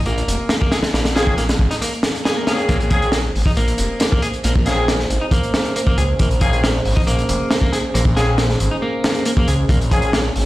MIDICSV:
0, 0, Header, 1, 7, 480
1, 0, Start_track
1, 0, Key_signature, -5, "minor"
1, 0, Tempo, 437956
1, 1032, Time_signature, 4, 2, 24, 8
1, 11460, End_track
2, 0, Start_track
2, 0, Title_t, "Analog synth pad"
2, 0, Program_c, 0, 89
2, 2949, Note_on_c, 0, 58, 82
2, 2950, Note_on_c, 0, 68, 76
2, 2950, Note_on_c, 0, 72, 92
2, 2951, Note_on_c, 0, 61, 74
2, 10587, Note_off_c, 0, 72, 0
2, 10638, Note_on_c, 0, 73, 88
2, 11460, Note_off_c, 0, 58, 0
2, 11460, Note_off_c, 0, 61, 0
2, 11460, Note_off_c, 0, 68, 0
2, 11460, Note_off_c, 0, 73, 0
2, 11460, End_track
3, 0, Start_track
3, 0, Title_t, "Horn section"
3, 0, Program_c, 1, 61
3, 1268, Note_on_c, 1, 58, 91
3, 1268, Note_on_c, 1, 60, 81
3, 1269, Note_on_c, 1, 61, 82
3, 1269, Note_on_c, 1, 68, 95
3, 1480, Note_off_c, 1, 58, 0
3, 1480, Note_off_c, 1, 60, 0
3, 1480, Note_off_c, 1, 61, 0
3, 1481, Note_off_c, 1, 68, 0
3, 2711, Note_on_c, 1, 60, 75
3, 2711, Note_on_c, 1, 68, 86
3, 2712, Note_on_c, 1, 58, 76
3, 2712, Note_on_c, 1, 61, 69
3, 3163, Note_off_c, 1, 60, 0
3, 3163, Note_off_c, 1, 68, 0
3, 3164, Note_off_c, 1, 58, 0
3, 3164, Note_off_c, 1, 61, 0
3, 3191, Note_on_c, 1, 61, 85
3, 3191, Note_on_c, 1, 68, 96
3, 3192, Note_on_c, 1, 58, 86
3, 3192, Note_on_c, 1, 60, 81
3, 3401, Note_off_c, 1, 68, 0
3, 3402, Note_off_c, 1, 58, 0
3, 3402, Note_off_c, 1, 60, 0
3, 3402, Note_off_c, 1, 61, 0
3, 5112, Note_on_c, 1, 58, 86
3, 5112, Note_on_c, 1, 60, 81
3, 5112, Note_on_c, 1, 61, 85
3, 5112, Note_on_c, 1, 68, 98
3, 5322, Note_off_c, 1, 58, 0
3, 5322, Note_off_c, 1, 60, 0
3, 5322, Note_off_c, 1, 61, 0
3, 5322, Note_off_c, 1, 68, 0
3, 7032, Note_on_c, 1, 58, 86
3, 7032, Note_on_c, 1, 60, 81
3, 7032, Note_on_c, 1, 61, 81
3, 7032, Note_on_c, 1, 68, 98
3, 7242, Note_off_c, 1, 58, 0
3, 7242, Note_off_c, 1, 60, 0
3, 7242, Note_off_c, 1, 61, 0
3, 7242, Note_off_c, 1, 68, 0
3, 8951, Note_on_c, 1, 58, 92
3, 8951, Note_on_c, 1, 60, 83
3, 8951, Note_on_c, 1, 61, 83
3, 8951, Note_on_c, 1, 68, 96
3, 9161, Note_off_c, 1, 58, 0
3, 9161, Note_off_c, 1, 61, 0
3, 9162, Note_off_c, 1, 60, 0
3, 9162, Note_off_c, 1, 68, 0
3, 10871, Note_on_c, 1, 58, 88
3, 10871, Note_on_c, 1, 60, 82
3, 10871, Note_on_c, 1, 61, 82
3, 10872, Note_on_c, 1, 68, 100
3, 11081, Note_off_c, 1, 61, 0
3, 11082, Note_off_c, 1, 58, 0
3, 11082, Note_off_c, 1, 60, 0
3, 11082, Note_off_c, 1, 68, 0
3, 11460, End_track
4, 0, Start_track
4, 0, Title_t, "Clean electric guitar"
4, 0, Program_c, 2, 27
4, 67, Note_on_c, 2, 58, 96
4, 538, Note_off_c, 2, 58, 0
4, 549, Note_on_c, 2, 58, 94
4, 600, Note_off_c, 2, 58, 0
4, 670, Note_on_c, 2, 58, 96
4, 784, Note_off_c, 2, 58, 0
4, 786, Note_on_c, 2, 68, 92
4, 839, Note_off_c, 2, 68, 0
4, 1028, Note_on_c, 2, 58, 76
4, 1113, Note_off_c, 2, 58, 0
4, 1267, Note_on_c, 2, 68, 69
4, 1498, Note_off_c, 2, 68, 0
4, 1509, Note_on_c, 2, 58, 80
4, 1560, Note_off_c, 2, 58, 0
4, 1871, Note_on_c, 2, 63, 73
4, 1920, Note_off_c, 2, 63, 0
4, 1990, Note_on_c, 2, 58, 91
4, 2101, Note_off_c, 2, 58, 0
4, 2470, Note_on_c, 2, 68, 81
4, 2588, Note_off_c, 2, 68, 0
4, 2596, Note_on_c, 2, 58, 70
4, 2706, Note_off_c, 2, 58, 0
4, 2710, Note_on_c, 2, 61, 90
4, 2761, Note_off_c, 2, 61, 0
4, 2952, Note_on_c, 2, 58, 74
4, 3035, Note_off_c, 2, 58, 0
4, 3193, Note_on_c, 2, 68, 74
4, 3421, Note_off_c, 2, 68, 0
4, 3432, Note_on_c, 2, 58, 79
4, 3481, Note_off_c, 2, 58, 0
4, 3797, Note_on_c, 2, 63, 71
4, 3843, Note_off_c, 2, 63, 0
4, 3911, Note_on_c, 2, 58, 91
4, 4377, Note_off_c, 2, 58, 0
4, 4390, Note_on_c, 2, 58, 95
4, 4441, Note_off_c, 2, 58, 0
4, 4513, Note_on_c, 2, 58, 97
4, 4625, Note_off_c, 2, 58, 0
4, 4629, Note_on_c, 2, 68, 90
4, 4680, Note_off_c, 2, 68, 0
4, 4875, Note_on_c, 2, 58, 74
4, 4956, Note_off_c, 2, 58, 0
4, 5113, Note_on_c, 2, 68, 72
4, 5341, Note_off_c, 2, 68, 0
4, 5354, Note_on_c, 2, 58, 82
4, 5403, Note_off_c, 2, 58, 0
4, 5714, Note_on_c, 2, 63, 73
4, 5762, Note_off_c, 2, 63, 0
4, 5830, Note_on_c, 2, 58, 89
4, 6299, Note_off_c, 2, 58, 0
4, 6311, Note_on_c, 2, 58, 94
4, 6361, Note_off_c, 2, 58, 0
4, 6433, Note_on_c, 2, 58, 98
4, 6545, Note_off_c, 2, 58, 0
4, 6551, Note_on_c, 2, 68, 97
4, 6601, Note_off_c, 2, 68, 0
4, 6793, Note_on_c, 2, 58, 77
4, 6875, Note_off_c, 2, 58, 0
4, 7031, Note_on_c, 2, 68, 72
4, 7260, Note_off_c, 2, 68, 0
4, 7269, Note_on_c, 2, 58, 82
4, 7320, Note_off_c, 2, 58, 0
4, 7630, Note_on_c, 2, 63, 74
4, 7680, Note_off_c, 2, 63, 0
4, 7749, Note_on_c, 2, 58, 99
4, 8213, Note_off_c, 2, 58, 0
4, 8226, Note_on_c, 2, 58, 99
4, 8279, Note_off_c, 2, 58, 0
4, 8351, Note_on_c, 2, 58, 99
4, 8464, Note_off_c, 2, 58, 0
4, 8467, Note_on_c, 2, 68, 94
4, 8519, Note_off_c, 2, 68, 0
4, 8706, Note_on_c, 2, 58, 77
4, 8792, Note_off_c, 2, 58, 0
4, 8950, Note_on_c, 2, 68, 70
4, 9179, Note_off_c, 2, 68, 0
4, 9188, Note_on_c, 2, 58, 79
4, 9240, Note_off_c, 2, 58, 0
4, 9551, Note_on_c, 2, 63, 69
4, 9600, Note_off_c, 2, 63, 0
4, 9668, Note_on_c, 2, 58, 96
4, 10135, Note_off_c, 2, 58, 0
4, 10148, Note_on_c, 2, 58, 97
4, 10200, Note_off_c, 2, 58, 0
4, 10274, Note_on_c, 2, 58, 102
4, 10385, Note_off_c, 2, 58, 0
4, 10389, Note_on_c, 2, 68, 96
4, 10440, Note_off_c, 2, 68, 0
4, 10631, Note_on_c, 2, 58, 76
4, 10714, Note_off_c, 2, 58, 0
4, 10868, Note_on_c, 2, 68, 71
4, 11098, Note_off_c, 2, 68, 0
4, 11112, Note_on_c, 2, 58, 83
4, 11162, Note_off_c, 2, 58, 0
4, 11460, End_track
5, 0, Start_track
5, 0, Title_t, "Detuned saw bass"
5, 0, Program_c, 3, 39
5, 67, Note_on_c, 3, 34, 83
5, 252, Note_off_c, 3, 34, 0
5, 306, Note_on_c, 3, 29, 94
5, 402, Note_off_c, 3, 29, 0
5, 1028, Note_on_c, 3, 34, 102
5, 1704, Note_off_c, 3, 34, 0
5, 1745, Note_on_c, 3, 32, 91
5, 1841, Note_off_c, 3, 32, 0
5, 2948, Note_on_c, 3, 34, 98
5, 3624, Note_off_c, 3, 34, 0
5, 3670, Note_on_c, 3, 32, 94
5, 3764, Note_off_c, 3, 32, 0
5, 3911, Note_on_c, 3, 34, 84
5, 4094, Note_off_c, 3, 34, 0
5, 4149, Note_on_c, 3, 29, 95
5, 4243, Note_off_c, 3, 29, 0
5, 4872, Note_on_c, 3, 34, 100
5, 5546, Note_off_c, 3, 34, 0
5, 5592, Note_on_c, 3, 32, 94
5, 5685, Note_off_c, 3, 32, 0
5, 6551, Note_on_c, 3, 37, 86
5, 6734, Note_off_c, 3, 37, 0
5, 6792, Note_on_c, 3, 34, 98
5, 7466, Note_off_c, 3, 34, 0
5, 7511, Note_on_c, 3, 32, 95
5, 7604, Note_off_c, 3, 32, 0
5, 7752, Note_on_c, 3, 34, 82
5, 7935, Note_off_c, 3, 34, 0
5, 7989, Note_on_c, 3, 29, 91
5, 8083, Note_off_c, 3, 29, 0
5, 8709, Note_on_c, 3, 34, 102
5, 9384, Note_off_c, 3, 34, 0
5, 9430, Note_on_c, 3, 32, 95
5, 9524, Note_off_c, 3, 32, 0
5, 10390, Note_on_c, 3, 37, 88
5, 10574, Note_off_c, 3, 37, 0
5, 10622, Note_on_c, 3, 34, 94
5, 11301, Note_off_c, 3, 34, 0
5, 11353, Note_on_c, 3, 32, 95
5, 11445, Note_off_c, 3, 32, 0
5, 11460, End_track
6, 0, Start_track
6, 0, Title_t, "Swell"
6, 0, Program_c, 4, 103
6, 1989, Note_on_c, 4, 60, 57
6, 2950, Note_off_c, 4, 60, 0
6, 11460, End_track
7, 0, Start_track
7, 0, Title_t, "Drums"
7, 62, Note_on_c, 9, 42, 78
7, 171, Note_off_c, 9, 42, 0
7, 194, Note_on_c, 9, 42, 44
7, 303, Note_off_c, 9, 42, 0
7, 311, Note_on_c, 9, 42, 69
7, 421, Note_off_c, 9, 42, 0
7, 539, Note_on_c, 9, 38, 123
7, 548, Note_on_c, 9, 42, 79
7, 649, Note_off_c, 9, 38, 0
7, 657, Note_off_c, 9, 42, 0
7, 675, Note_on_c, 9, 36, 89
7, 784, Note_off_c, 9, 36, 0
7, 785, Note_on_c, 9, 38, 94
7, 788, Note_on_c, 9, 42, 73
7, 894, Note_off_c, 9, 38, 0
7, 897, Note_off_c, 9, 42, 0
7, 906, Note_on_c, 9, 38, 103
7, 919, Note_on_c, 9, 42, 71
7, 1015, Note_off_c, 9, 38, 0
7, 1028, Note_off_c, 9, 42, 0
7, 1032, Note_on_c, 9, 38, 104
7, 1036, Note_on_c, 9, 42, 80
7, 1141, Note_off_c, 9, 38, 0
7, 1145, Note_off_c, 9, 42, 0
7, 1152, Note_on_c, 9, 38, 101
7, 1154, Note_on_c, 9, 42, 81
7, 1261, Note_off_c, 9, 38, 0
7, 1263, Note_off_c, 9, 42, 0
7, 1275, Note_on_c, 9, 38, 107
7, 1275, Note_on_c, 9, 42, 75
7, 1384, Note_off_c, 9, 38, 0
7, 1384, Note_off_c, 9, 42, 0
7, 1391, Note_on_c, 9, 36, 85
7, 1501, Note_off_c, 9, 36, 0
7, 1510, Note_on_c, 9, 42, 62
7, 1515, Note_on_c, 9, 38, 32
7, 1619, Note_off_c, 9, 42, 0
7, 1624, Note_off_c, 9, 38, 0
7, 1633, Note_on_c, 9, 42, 68
7, 1637, Note_on_c, 9, 38, 91
7, 1743, Note_off_c, 9, 42, 0
7, 1744, Note_on_c, 9, 36, 85
7, 1747, Note_off_c, 9, 38, 0
7, 1853, Note_off_c, 9, 36, 0
7, 1871, Note_on_c, 9, 38, 33
7, 1874, Note_on_c, 9, 42, 58
7, 1981, Note_off_c, 9, 38, 0
7, 1983, Note_off_c, 9, 42, 0
7, 1993, Note_on_c, 9, 42, 89
7, 2103, Note_off_c, 9, 42, 0
7, 2110, Note_on_c, 9, 42, 38
7, 2220, Note_off_c, 9, 42, 0
7, 2225, Note_on_c, 9, 38, 109
7, 2231, Note_on_c, 9, 42, 65
7, 2334, Note_off_c, 9, 38, 0
7, 2340, Note_off_c, 9, 42, 0
7, 2365, Note_on_c, 9, 42, 38
7, 2470, Note_on_c, 9, 38, 100
7, 2472, Note_off_c, 9, 42, 0
7, 2472, Note_on_c, 9, 42, 72
7, 2580, Note_off_c, 9, 38, 0
7, 2582, Note_off_c, 9, 42, 0
7, 2707, Note_on_c, 9, 38, 92
7, 2710, Note_on_c, 9, 42, 75
7, 2817, Note_off_c, 9, 38, 0
7, 2820, Note_off_c, 9, 42, 0
7, 2835, Note_on_c, 9, 42, 36
7, 2945, Note_off_c, 9, 42, 0
7, 2945, Note_on_c, 9, 42, 83
7, 2948, Note_on_c, 9, 36, 97
7, 3055, Note_off_c, 9, 42, 0
7, 3058, Note_off_c, 9, 36, 0
7, 3074, Note_on_c, 9, 42, 46
7, 3183, Note_off_c, 9, 42, 0
7, 3183, Note_on_c, 9, 42, 63
7, 3188, Note_on_c, 9, 36, 88
7, 3293, Note_off_c, 9, 42, 0
7, 3298, Note_off_c, 9, 36, 0
7, 3311, Note_on_c, 9, 42, 38
7, 3418, Note_on_c, 9, 38, 106
7, 3421, Note_off_c, 9, 42, 0
7, 3428, Note_on_c, 9, 42, 86
7, 3528, Note_off_c, 9, 38, 0
7, 3538, Note_off_c, 9, 42, 0
7, 3677, Note_on_c, 9, 46, 75
7, 3786, Note_off_c, 9, 46, 0
7, 3788, Note_on_c, 9, 36, 85
7, 3898, Note_off_c, 9, 36, 0
7, 3911, Note_on_c, 9, 42, 91
7, 4020, Note_off_c, 9, 42, 0
7, 4030, Note_on_c, 9, 42, 43
7, 4140, Note_off_c, 9, 42, 0
7, 4142, Note_on_c, 9, 42, 67
7, 4251, Note_off_c, 9, 42, 0
7, 4383, Note_on_c, 9, 42, 91
7, 4394, Note_on_c, 9, 38, 113
7, 4493, Note_off_c, 9, 42, 0
7, 4503, Note_off_c, 9, 38, 0
7, 4520, Note_on_c, 9, 36, 93
7, 4629, Note_on_c, 9, 42, 72
7, 4630, Note_off_c, 9, 36, 0
7, 4738, Note_off_c, 9, 42, 0
7, 4750, Note_on_c, 9, 42, 36
7, 4859, Note_off_c, 9, 42, 0
7, 4865, Note_on_c, 9, 42, 76
7, 4975, Note_off_c, 9, 42, 0
7, 4993, Note_on_c, 9, 36, 102
7, 5102, Note_off_c, 9, 36, 0
7, 5105, Note_on_c, 9, 42, 67
7, 5123, Note_on_c, 9, 38, 54
7, 5214, Note_off_c, 9, 42, 0
7, 5233, Note_off_c, 9, 38, 0
7, 5351, Note_on_c, 9, 38, 104
7, 5354, Note_on_c, 9, 42, 91
7, 5460, Note_off_c, 9, 38, 0
7, 5463, Note_off_c, 9, 42, 0
7, 5472, Note_on_c, 9, 38, 51
7, 5582, Note_off_c, 9, 38, 0
7, 5593, Note_on_c, 9, 42, 62
7, 5703, Note_off_c, 9, 42, 0
7, 5823, Note_on_c, 9, 36, 104
7, 5826, Note_on_c, 9, 42, 93
7, 5933, Note_off_c, 9, 36, 0
7, 5936, Note_off_c, 9, 42, 0
7, 5954, Note_on_c, 9, 42, 47
7, 6064, Note_off_c, 9, 42, 0
7, 6070, Note_on_c, 9, 38, 115
7, 6073, Note_on_c, 9, 42, 65
7, 6179, Note_off_c, 9, 38, 0
7, 6183, Note_off_c, 9, 42, 0
7, 6192, Note_on_c, 9, 42, 42
7, 6301, Note_off_c, 9, 42, 0
7, 6312, Note_on_c, 9, 42, 90
7, 6422, Note_off_c, 9, 42, 0
7, 6430, Note_on_c, 9, 36, 85
7, 6540, Note_off_c, 9, 36, 0
7, 6551, Note_on_c, 9, 42, 62
7, 6661, Note_off_c, 9, 42, 0
7, 6788, Note_on_c, 9, 42, 76
7, 6792, Note_on_c, 9, 36, 98
7, 6897, Note_off_c, 9, 42, 0
7, 6902, Note_off_c, 9, 36, 0
7, 6914, Note_on_c, 9, 42, 39
7, 7024, Note_off_c, 9, 42, 0
7, 7024, Note_on_c, 9, 42, 64
7, 7029, Note_on_c, 9, 36, 88
7, 7134, Note_off_c, 9, 42, 0
7, 7139, Note_off_c, 9, 36, 0
7, 7156, Note_on_c, 9, 42, 40
7, 7265, Note_off_c, 9, 42, 0
7, 7274, Note_on_c, 9, 38, 112
7, 7278, Note_on_c, 9, 42, 86
7, 7383, Note_off_c, 9, 38, 0
7, 7387, Note_off_c, 9, 42, 0
7, 7509, Note_on_c, 9, 46, 71
7, 7619, Note_off_c, 9, 46, 0
7, 7638, Note_on_c, 9, 36, 91
7, 7747, Note_off_c, 9, 36, 0
7, 7752, Note_on_c, 9, 42, 84
7, 7862, Note_off_c, 9, 42, 0
7, 7877, Note_on_c, 9, 42, 41
7, 7986, Note_off_c, 9, 42, 0
7, 7989, Note_on_c, 9, 42, 69
7, 8099, Note_off_c, 9, 42, 0
7, 8226, Note_on_c, 9, 38, 113
7, 8230, Note_on_c, 9, 42, 78
7, 8336, Note_off_c, 9, 38, 0
7, 8340, Note_off_c, 9, 42, 0
7, 8346, Note_on_c, 9, 36, 86
7, 8455, Note_off_c, 9, 36, 0
7, 8466, Note_on_c, 9, 38, 36
7, 8473, Note_on_c, 9, 42, 59
7, 8576, Note_off_c, 9, 38, 0
7, 8582, Note_off_c, 9, 42, 0
7, 8712, Note_on_c, 9, 42, 84
7, 8822, Note_off_c, 9, 42, 0
7, 8825, Note_on_c, 9, 36, 90
7, 8935, Note_off_c, 9, 36, 0
7, 8952, Note_on_c, 9, 38, 49
7, 8952, Note_on_c, 9, 42, 73
7, 9062, Note_off_c, 9, 38, 0
7, 9062, Note_off_c, 9, 42, 0
7, 9184, Note_on_c, 9, 38, 102
7, 9185, Note_on_c, 9, 42, 82
7, 9294, Note_off_c, 9, 38, 0
7, 9294, Note_off_c, 9, 42, 0
7, 9313, Note_on_c, 9, 38, 51
7, 9423, Note_off_c, 9, 38, 0
7, 9427, Note_on_c, 9, 42, 66
7, 9537, Note_off_c, 9, 42, 0
7, 9908, Note_on_c, 9, 42, 65
7, 9911, Note_on_c, 9, 38, 119
7, 10017, Note_off_c, 9, 42, 0
7, 10020, Note_off_c, 9, 38, 0
7, 10025, Note_on_c, 9, 42, 42
7, 10134, Note_off_c, 9, 42, 0
7, 10142, Note_on_c, 9, 42, 83
7, 10252, Note_off_c, 9, 42, 0
7, 10268, Note_on_c, 9, 36, 90
7, 10377, Note_off_c, 9, 36, 0
7, 10386, Note_on_c, 9, 42, 65
7, 10496, Note_off_c, 9, 42, 0
7, 10622, Note_on_c, 9, 36, 109
7, 10628, Note_on_c, 9, 42, 86
7, 10731, Note_off_c, 9, 36, 0
7, 10737, Note_off_c, 9, 42, 0
7, 10756, Note_on_c, 9, 42, 46
7, 10865, Note_off_c, 9, 42, 0
7, 10866, Note_on_c, 9, 36, 91
7, 10867, Note_on_c, 9, 42, 67
7, 10976, Note_off_c, 9, 36, 0
7, 10976, Note_off_c, 9, 42, 0
7, 10981, Note_on_c, 9, 42, 44
7, 11091, Note_off_c, 9, 42, 0
7, 11105, Note_on_c, 9, 38, 119
7, 11109, Note_on_c, 9, 42, 81
7, 11215, Note_off_c, 9, 38, 0
7, 11218, Note_off_c, 9, 42, 0
7, 11350, Note_on_c, 9, 46, 76
7, 11459, Note_off_c, 9, 46, 0
7, 11460, End_track
0, 0, End_of_file